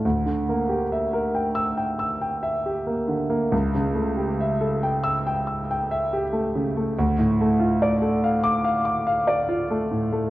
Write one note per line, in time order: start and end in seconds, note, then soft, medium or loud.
0.05 3.49 D2 medium
0.26 0.61 D3 soft
0.49 0.83 A#3 soft
0.69 1.03 G4 soft
0.92 1.26 E5 soft
1.13 1.47 A#4 soft
1.34 1.69 G5 medium
1.55 1.90 E6 medium
1.77 2.13 G5 medium
1.99 2.35 E6 medium
2.21 2.57 G5 soft
2.43 2.78 E5 medium
2.66 3.01 G4 soft
2.87 3.22 A#3 soft
3.08 3.43 D3 soft
3.30 3.52 A#3 soft
3.52 6.91 C#2 medium
3.75 4.09 C#3 soft
3.95 4.29 A3 soft
4.17 4.51 G4 soft
4.41 4.74 E5 medium
4.61 4.95 A4 medium
4.83 5.17 G5 medium
5.04 5.37 E6 medium
5.26 5.60 G5 medium
5.47 5.81 E6 medium
5.71 6.03 G5 medium
5.91 6.24 E5 medium
6.13 6.46 G4 medium
6.33 6.66 A3 soft
6.55 6.88 C#3 soft
6.77 6.97 A3 soft
6.99 10.30 D2 medium
7.19 7.52 A2 medium
7.41 7.73 A3 medium
7.60 7.93 F4 medium
7.82 8.15 D5 medium
8.02 8.35 A4 medium
8.24 8.57 F5 medium
8.43 8.78 D6 medium
8.64 8.99 F5 medium
8.85 9.20 D6 medium
9.07 9.41 F5 medium
9.27 9.62 D5 medium
9.49 9.83 F4 medium
9.71 10.05 A3 medium
9.91 10.26 A2 soft
10.12 10.30 A3 medium